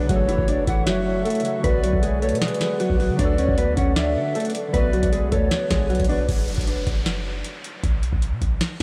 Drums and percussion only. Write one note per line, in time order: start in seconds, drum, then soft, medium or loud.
0.09 kick loud
0.09 closed hi-hat medium
0.29 closed hi-hat medium
0.38 kick loud
0.48 closed hi-hat medium
0.67 kick loud
0.67 closed hi-hat medium
0.87 snare loud
0.87 closed hi-hat medium
1.25 closed hi-hat medium
1.30 closed hi-hat medium
1.35 closed hi-hat medium
1.40 closed hi-hat medium
1.45 closed hi-hat medium
1.64 kick loud
1.64 closed hi-hat medium
1.84 closed hi-hat medium
1.93 kick loud
2.03 closed hi-hat medium
2.22 closed hi-hat soft
2.29 closed hi-hat medium
2.35 closed hi-hat medium
2.42 snare loud
2.42 closed hi-hat medium
2.48 closed hi-hat medium
2.54 closed hi-hat medium
2.61 snare loud
2.61 closed hi-hat medium
2.80 closed hi-hat medium
2.90 kick loud
3.00 open hi-hat medium
3.19 kick loud
3.19 closed hi-hat medium
3.38 closed hi-hat medium
3.48 kick loud
3.58 closed hi-hat medium
3.77 kick loud
3.77 closed hi-hat medium
3.96 snare loud
3.96 closed hi-hat medium
4.35 closed hi-hat medium
4.40 closed hi-hat medium
4.45 closed hi-hat medium
4.50 closed hi-hat medium
4.55 closed hi-hat medium
4.74 kick loud
4.74 closed hi-hat medium
4.93 closed hi-hat soft
5.03 kick loud
5.03 closed hi-hat medium
5.13 closed hi-hat medium
5.32 kick loud
5.32 closed hi-hat medium
5.51 snare loud
5.51 closed hi-hat medium
5.70 kick loud
5.70 snare loud
5.70 closed hi-hat medium
5.90 closed hi-hat soft
5.95 closed hi-hat medium
6.00 kick loud
6.00 closed hi-hat medium
6.04 closed hi-hat medium
6.09 open hi-hat medium
6.29 kick loud
6.29 closed hi-hat medium
6.48 closed hi-hat medium
6.54 kick medium
6.54 closed hi-hat medium
6.61 closed hi-hat medium
6.67 closed hi-hat medium
6.87 kick medium
6.87 closed hi-hat medium
7.06 snare loud
7.06 closed hi-hat medium
7.44 closed hi-hat medium
7.64 closed hi-hat medium
7.84 kick loud
7.84 closed hi-hat medium
8.03 closed hi-hat medium
8.13 kick medium
8.22 closed hi-hat medium
8.42 kick medium
8.42 closed hi-hat medium
8.61 snare loud
8.61 closed hi-hat medium